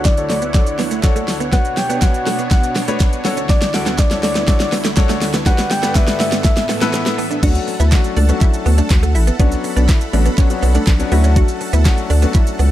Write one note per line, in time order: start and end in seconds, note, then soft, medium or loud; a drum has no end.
0.00 1.51 D2 medium
0.00 1.51 D3 medium
0.00 1.51 E4 medium
0.00 5.42 C#5 medium
0.00 5.42 F#5 medium
0.05 0.29 D5 medium
0.05 muted clean electric guitar stroke soft
0.05 kick loud
0.05 snare medium
0.05 clap medium
0.05 closed hi-hat medium
0.05 shaker medium
0.17 0.39 D4 medium
0.17 0.39 F#4 medium
0.17 0.40 A4 medium
0.17 0.40 C#5 medium
0.17 closed hi-hat soft
0.17 shaker soft
0.29 0.38 A3 medium
0.29 0.52 D5 medium
0.29 snare medium
0.29 open hi-hat medium
0.29 shaker medium
0.42 0.50 B3 medium
0.42 closed hi-hat medium
0.42 shaker medium
0.54 0.84 D4 medium
0.54 0.84 F#4 medium
0.54 0.84 A4 medium
0.54 0.84 C#5 medium
0.54 0.77 D5 medium
0.54 muted clean electric guitar stroke soft
0.54 kick loud
0.54 snare medium
0.54 clap medium
0.54 closed hi-hat medium
0.54 shaker medium
0.67 closed hi-hat medium
0.67 shaker medium
0.79 0.87 B3 medium
0.79 snare medium
0.79 open hi-hat medium
0.79 shaker medium
0.91 0.99 A3 medium
0.91 closed hi-hat medium
0.91 shaker medium
1.03 1.33 D4 loud
1.03 1.33 F#4 medium
1.03 1.33 A4 medium
1.03 1.33 C#5 loud
1.03 kick loud
1.03 snare medium
1.03 clap medium
1.03 closed hi-hat medium
1.03 shaker medium
1.16 1.24 A3 medium
1.16 closed hi-hat medium
1.16 shaker medium
1.28 muted clean electric guitar stroke soft
1.28 snare medium
1.28 open hi-hat medium
1.28 shaker medium
1.40 1.49 B3 medium
1.40 closed hi-hat medium
1.40 shaker medium
1.52 3.23 B2 medium
1.52 3.23 B3 medium
1.52 1.61 B3 loud
1.52 1.75 D4 medium
1.52 3.23 D4 medium
1.52 1.75 F#4 medium
1.52 1.75 B4 medium
1.52 1.75 C#5 medium
1.52 1.79 F#5 loud
1.52 kick loud
1.52 snare medium
1.52 closed hi-hat medium
1.52 shaker medium
1.65 closed hi-hat medium
1.65 shaker medium
1.77 2.03 G5 loud
1.77 muted clean electric guitar stroke soft
1.77 snare loud
1.77 open hi-hat medium
1.77 shaker soft
1.89 1.98 B3 medium
1.89 1.97 D4 medium
1.89 1.97 F#4 medium
1.89 1.97 B4 medium
1.89 1.97 C#5 medium
1.89 closed hi-hat medium
1.89 shaker medium
2.02 2.53 D4 medium
2.02 2.53 F#4 medium
2.02 2.53 B4 medium
2.02 2.53 C#5 medium
2.02 2.26 F#5 loud
2.02 muted clean electric guitar stroke soft
2.02 kick loud
2.02 snare loud
2.02 clap medium
2.02 closed hi-hat medium
2.02 shaker medium
2.14 closed hi-hat medium
2.14 shaker medium
2.27 2.35 A3 medium
2.27 2.38 F#5 loud
2.27 snare medium
2.27 open hi-hat medium
2.27 shaker medium
2.39 2.47 B3 medium
2.39 closed hi-hat medium
2.39 shaker medium
2.51 2.74 F#5 loud
2.51 muted clean electric guitar stroke soft
2.51 kick loud
2.51 snare loud
2.51 clap medium
2.51 closed hi-hat medium
2.51 shaker medium
2.63 closed hi-hat medium
2.63 shaker medium
2.76 2.84 B3 medium
2.76 snare medium
2.76 open hi-hat medium
2.76 shaker medium
2.88 2.96 A3 medium
2.88 3.23 D4 loud
2.88 3.23 F#4 medium
2.88 3.25 B4 medium
2.88 3.24 C#5 loud
2.88 closed hi-hat medium
2.88 shaker medium
3.00 muted clean electric guitar stroke soft
3.00 kick loud
3.00 snare medium
3.00 clap medium
3.00 closed hi-hat medium
3.00 shaker medium
3.13 closed hi-hat medium
3.13 shaker medium
3.25 5.44 D2 medium
3.25 6.41 D3 medium
3.25 3.33 B3 medium
3.25 3.64 D4 loud
3.25 5.44 E4 medium
3.25 3.64 F#4 medium
3.25 3.64 A4 medium
3.25 3.64 C#5 loud
3.25 snare loud
3.25 open hi-hat medium
3.25 shaker medium
3.37 3.45 C#4 medium
3.37 closed hi-hat medium
3.37 shaker medium
3.49 3.58 D4 medium
3.49 3.75 D5 loud
3.49 kick loud
3.49 snare loud
3.49 closed hi-hat medium
3.49 shaker medium
3.62 snare loud
3.62 closed hi-hat medium
3.62 shaker medium
3.74 3.96 D4 medium
3.74 3.96 F#4 medium
3.74 3.96 A4 medium
3.74 3.96 D5 medium
3.74 4.00 F#5 loud
3.74 muted clean electric guitar stroke soft
3.74 snare loud
3.74 open hi-hat medium
3.74 shaker medium
3.86 3.95 B3 medium
3.86 snare loud
3.86 closed hi-hat medium
3.86 shaker medium
3.99 4.22 D5 loud
3.99 muted clean electric guitar stroke soft
3.99 kick loud
3.99 snare loud
3.99 clap medium
3.99 closed hi-hat medium
3.99 shaker medium
4.11 4.33 D4 medium
4.11 4.33 F#4 medium
4.11 4.33 A4 medium
4.11 4.33 C#5 medium
4.11 snare loud
4.11 closed hi-hat medium
4.11 shaker soft
4.23 4.31 A3 medium
4.23 4.46 D5 medium
4.23 snare loud
4.23 open hi-hat medium
4.23 shaker medium
4.35 4.44 B3 medium
4.35 snare loud
4.35 closed hi-hat medium
4.35 shaker medium
4.48 4.77 D4 medium
4.48 4.77 F#4 medium
4.48 4.77 A4 medium
4.48 4.77 C#5 medium
4.48 4.71 D5 medium
4.48 muted clean electric guitar stroke soft
4.48 kick loud
4.48 snare loud
4.48 clap medium
4.48 closed hi-hat medium
4.48 shaker medium
4.60 snare loud
4.60 closed hi-hat medium
4.60 shaker medium
4.72 4.81 B3 medium
4.72 snare loud
4.72 open hi-hat medium
4.72 shaker medium
4.85 4.93 A3 medium
4.85 snare loud
4.85 closed hi-hat medium
4.85 shaker medium
4.97 5.26 D4 loud
4.97 5.26 F#4 loud
4.97 5.26 A4 loud
4.97 5.27 C#5 loud
4.97 kick loud
4.97 snare loud
4.97 clap medium
4.97 closed hi-hat medium
4.97 shaker medium
5.09 5.17 A3 medium
5.09 snare loud
5.09 closed hi-hat medium
5.09 shaker medium
5.22 muted clean electric guitar stroke soft
5.22 snare loud
5.22 open hi-hat medium
5.22 shaker medium
5.34 5.42 B3 medium
5.34 snare loud
5.34 closed hi-hat medium
5.34 shaker medium
5.46 6.44 G2 medium
5.46 6.44 B3 medium
5.46 5.68 D4 medium
5.46 5.54 D4 loud
5.46 5.68 F#4 medium
5.46 5.68 G4 medium
5.46 7.41 A4 medium
5.46 5.68 B4 medium
5.46 6.44 F#5 medium
5.46 5.72 F#5 loud
5.46 kick loud
5.46 snare loud
5.46 closed hi-hat medium
5.46 shaker medium
5.58 snare loud
5.58 closed hi-hat medium
5.58 shaker medium
5.71 5.97 G5 loud
5.71 muted clean electric guitar stroke soft
5.71 snare loud
5.71 open hi-hat medium
5.71 shaker soft
5.83 5.91 B3 medium
5.83 5.90 D4 medium
5.83 5.90 F#4 medium
5.83 5.90 G4 medium
5.83 5.91 B4 medium
5.83 snare loud
5.83 closed hi-hat medium
5.83 shaker medium
5.95 6.44 D4 medium
5.95 6.45 F#4 medium
5.95 6.45 G4 medium
5.95 6.45 B4 medium
5.95 6.19 E5 loud
5.95 muted clean electric guitar stroke soft
5.95 kick loud
5.95 snare loud
5.95 clap medium
5.95 closed hi-hat medium
5.95 shaker medium
6.08 snare loud
6.08 closed hi-hat medium
6.08 shaker medium
6.20 6.28 A3 medium
6.20 6.31 E5 loud
6.20 snare loud
6.20 open hi-hat medium
6.20 shaker medium
6.32 6.40 B3 medium
6.32 snare loud
6.32 closed hi-hat medium
6.32 shaker medium
6.44 7.42 A2 medium
6.44 7.42 E3 medium
6.44 7.42 B3 medium
6.44 6.67 E5 medium
6.44 7.42 E5 medium
6.44 muted clean electric guitar stroke soft
6.44 kick loud
6.44 snare loud
6.44 clap medium
6.44 closed hi-hat medium
6.44 shaker medium
6.57 snare loud
6.57 closed hi-hat medium
6.57 shaker medium
6.69 6.77 B3 medium
6.69 snare loud
6.69 open hi-hat medium
6.69 shaker medium
6.81 6.90 A3 medium
6.81 7.33 B3 loud
6.81 7.33 E4 loud
6.81 7.33 A4 medium
6.81 7.33 B4 loud
6.81 snare loud
6.81 closed hi-hat medium
6.81 shaker medium
6.93 muted clean electric guitar stroke soft
6.93 snare loud
6.93 clap medium
6.93 closed hi-hat medium
6.93 shaker medium
7.06 snare loud
7.06 closed hi-hat medium
7.06 shaker medium
7.18 7.26 B3 medium
7.18 open hi-hat medium
7.18 shaker medium
7.31 7.39 D4 medium
7.31 closed hi-hat medium
7.31 shaker medium
7.43 7.59 D2 loud
7.43 7.72 F#3 medium
7.43 7.72 A3 medium
7.43 7.72 C#4 medium
7.43 7.51 D4 medium
7.43 7.72 D4 medium
7.43 7.72 F#4 medium
7.43 7.62 F#4 medium
7.43 12.71 A4 medium
7.43 7.62 F#5 loud
7.43 12.71 F#5 medium
7.43 9.38 A5 medium
7.43 kick loud
7.43 closed hi-hat medium
7.43 crash loud
7.43 shaker medium
7.55 closed hi-hat medium
7.55 shaker medium
7.67 muted clean electric guitar stroke soft
7.67 open hi-hat medium
7.67 shaker soft
7.80 7.96 D2 loud
7.80 7.88 B3 medium
7.80 7.90 E4 medium
7.80 7.89 E5 medium
7.80 closed hi-hat medium
7.80 shaker medium
7.92 8.14 F#3 medium
7.92 8.14 A3 medium
7.92 8.14 C#4 medium
7.92 8.14 D4 medium
7.92 8.14 F#4 medium
7.92 8.11 F#4 medium
7.92 8.11 F#5 medium
7.92 muted clean electric guitar stroke soft
7.92 kick loud
7.92 snare loud
7.92 clap medium
7.92 clap loud
7.92 closed hi-hat medium
7.92 shaker medium
8.04 closed hi-hat medium
8.04 shaker medium
8.17 8.32 C#2 medium
8.17 8.25 A3 medium
8.17 8.26 D4 medium
8.17 8.26 D5 medium
8.17 open hi-hat medium
8.17 shaker medium
8.29 8.88 F#3 medium
8.29 8.88 A3 medium
8.29 8.37 B3 medium
8.29 8.88 C#4 medium
8.29 8.88 D4 medium
8.29 8.88 F#4 medium
8.29 closed hi-hat medium
8.29 shaker medium
8.41 8.51 E4 medium
8.41 8.51 E5 medium
8.41 muted clean electric guitar stroke soft
8.41 kick loud
8.41 clap medium
8.41 closed hi-hat medium
8.41 shaker medium
8.54 closed hi-hat medium
8.54 shaker medium
8.66 8.82 D2 loud
8.66 8.74 B3 medium
8.66 open hi-hat medium
8.66 shaker medium
8.78 8.86 A3 medium
8.78 8.88 D4 medium
8.78 8.87 D5 medium
8.78 closed hi-hat medium
8.78 shaker medium
8.90 9.16 D2 loud
8.90 9.00 F#4 medium
8.90 9.00 F#5 medium
8.90 kick loud
8.90 snare medium
8.90 clap medium
8.90 clap loud
8.90 closed hi-hat medium
8.90 shaker medium
9.03 9.11 A3 medium
9.03 closed hi-hat medium
9.03 shaker medium
9.15 9.31 A1 medium
9.15 9.25 E4 medium
9.15 9.24 E5 medium
9.15 muted clean electric guitar stroke soft
9.15 open hi-hat medium
9.15 shaker medium
9.27 9.36 B3 medium
9.27 closed hi-hat medium
9.27 shaker medium
9.39 9.55 B1 loud
9.39 9.84 F#3 medium
9.39 9.84 B3 medium
9.39 9.48 B3 loud
9.39 9.84 C#4 medium
9.39 9.84 D4 medium
9.39 9.59 D4 medium
9.39 9.84 F#4 loud
9.39 9.58 D5 loud
9.39 11.10 B5 medium
9.39 kick loud
9.39 closed hi-hat medium
9.39 shaker medium
9.52 closed hi-hat medium
9.52 shaker medium
9.64 muted clean electric guitar stroke soft
9.64 open hi-hat medium
9.64 shaker soft
9.77 9.92 B1 loud
9.77 9.85 B3 medium
9.77 9.86 D4 medium
9.77 9.86 D5 medium
9.77 closed hi-hat medium
9.77 shaker medium
9.89 10.08 E4 medium
9.89 10.07 E5 medium
9.89 muted clean electric guitar stroke soft
9.89 kick loud
9.89 snare loud
9.89 clap medium
9.89 clap loud
9.89 closed hi-hat medium
9.89 shaker medium
10.01 closed hi-hat medium
10.01 shaker medium
10.13 10.29 A1 loud
10.13 10.28 F#3 medium
10.13 10.22 A3 medium
10.13 10.28 B3 medium
10.13 10.28 C#4 medium
10.13 10.28 D4 medium
10.13 10.23 D4 medium
10.13 10.28 F#4 medium
10.13 10.23 D5 medium
10.13 open hi-hat medium
10.13 shaker medium
10.25 10.34 B3 medium
10.25 closed hi-hat medium
10.25 shaker medium
10.38 10.45 F#3 medium
10.38 10.45 B3 medium
10.38 10.45 C#4 medium
10.38 10.48 C#4 medium
10.38 10.45 D4 medium
10.38 10.45 F#4 medium
10.38 10.47 C#5 medium
10.38 muted clean electric guitar stroke soft
10.38 kick loud
10.38 clap medium
10.38 closed hi-hat medium
10.38 shaker medium
10.50 10.79 F#3 medium
10.50 10.80 B3 medium
10.50 10.80 C#4 medium
10.50 10.80 D4 medium
10.50 10.80 F#4 medium
10.50 closed hi-hat medium
10.50 shaker medium
10.63 10.78 B1 medium
10.63 10.71 B3 medium
10.63 open hi-hat medium
10.63 shaker medium
10.75 10.83 A3 medium
10.75 10.85 D4 medium
10.75 10.84 D5 medium
10.75 closed hi-hat medium
10.75 shaker medium
10.87 11.03 B1 medium
10.87 10.97 D4 medium
10.87 10.96 D5 medium
10.87 muted clean electric guitar stroke medium
10.87 kick loud
10.87 snare medium
10.87 clap medium
10.87 clap loud
10.87 closed hi-hat medium
10.87 shaker medium
10.99 11.10 F#3 medium
10.99 11.12 B3 medium
10.99 11.10 C#4 medium
10.99 11.10 D4 medium
10.99 11.10 F#4 loud
10.99 closed hi-hat medium
10.99 shaker medium
11.11 11.43 D2 loud
11.11 11.71 F#3 medium
11.11 11.71 A3 medium
11.11 11.20 B3 medium
11.11 11.71 C#4 medium
11.11 11.71 D4 medium
11.11 11.22 E4 medium
11.11 11.71 F#4 loud
11.11 11.21 E5 medium
11.11 12.71 A5 medium
11.11 open hi-hat medium
11.11 shaker medium
11.24 11.32 C#4 medium
11.24 closed hi-hat medium
11.24 shaker medium
11.36 11.44 D4 medium
11.36 11.56 F#4 medium
11.36 11.55 F#5 medium
11.36 kick loud
11.36 closed hi-hat medium
11.36 shaker medium
11.48 closed hi-hat medium
11.48 shaker medium
11.61 muted clean electric guitar stroke soft
11.61 open hi-hat medium
11.61 shaker soft
11.73 11.89 D2 loud
11.73 11.81 B3 medium
11.73 11.83 E4 medium
11.73 11.82 E5 medium
11.73 closed hi-hat medium
11.73 shaker medium
11.85 12.07 F#3 medium
11.85 12.07 A3 medium
11.85 12.07 C#4 medium
11.85 12.08 D4 medium
11.85 12.08 F#4 medium
11.85 12.05 F#4 medium
11.85 12.04 F#5 medium
11.85 muted clean electric guitar stroke soft
11.85 kick loud
11.85 snare loud
11.85 clap medium
11.85 clap loud
11.85 closed hi-hat medium
11.85 shaker medium
11.98 closed hi-hat medium
11.98 shaker medium
12.10 12.26 D2 loud
12.10 12.18 A3 medium
12.10 12.20 D4 medium
12.10 12.19 D5 medium
12.10 open hi-hat medium
12.10 shaker medium
12.22 12.71 F#3 medium
12.22 12.71 A3 medium
12.22 12.31 B3 medium
12.22 12.71 C#4 medium
12.22 12.71 D4 medium
12.22 12.71 F#4 medium
12.22 closed hi-hat medium
12.22 shaker medium
12.34 12.44 E4 medium
12.34 12.44 E5 medium
12.34 muted clean electric guitar stroke soft
12.34 kick loud
12.34 clap medium
12.34 closed hi-hat medium
12.34 shaker medium
12.47 closed hi-hat medium
12.47 shaker medium
12.59 12.71 C#2 medium
12.59 12.68 B3 medium
12.59 open hi-hat medium
12.59 shaker medium